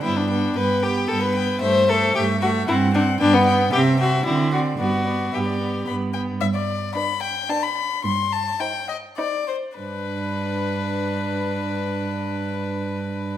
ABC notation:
X:1
M:3/4
L:1/16
Q:1/4=111
K:G
V:1 name="Violin"
g2 g2 g2 g2 g2 g2 | e2 e2 e2 e2 f2 f2 | g2 g2 e2 e2 d2 d2 | d2 d2 e d3 b2 g2 |
e d3 b2 g2 a b3 | c'2 a2 g2 _e2 d2 c2 | B12- | B12 |]
V:2 name="Violin"
E D3 B2 G2 A B3 | c2 A2 G2 F2 E2 D2 | D B,3 G2 F2 E2 F2 | F4 G4 z4 |
z4 B4 B4 | z4 c4 c4 | B12- | B12 |]
V:3 name="Viola"
B,2 B,2 B,2 B,2 B,2 B,2 | A,2 A,2 A,2 A,2 C2 C2 | B,2 B,2 C2 C2 C2 C2 | B,2 B,2 B,2 B,2 B,2 B,2 |
z4 D4 D4 | z4 _E4 E4 | D12- | D12 |]
V:4 name="Cello" clef=bass
G,,4 G,,4 G,,4 | G,,4 G,,4 G,,4 | G,,4 C,4 D,4 | G,,4 G,,4 G,,4 |
G,,4 z8 | G,,4 z8 | G,,12- | G,,12 |]